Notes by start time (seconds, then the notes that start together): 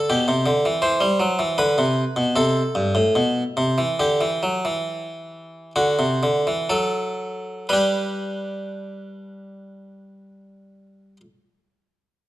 0.10 B2 G4
0.28 C3
0.46 D3
0.65 E3
0.82 E3 C5
1.01 G3
1.20 F#3
1.39 E3
1.58 D3 B4
1.78 C3
2.16 B2
2.36 C3 A4
2.75 G2
2.95 A2
3.15 B2
3.57 C3
3.78 E3
4.00 D3 G4
4.21 E3
4.43 F#3
4.65 E3
5.76 D3 F#4
5.99 C3
6.23 D3
6.47 E3
6.70 F#3 A4
7.69 G3 D4 G4 B4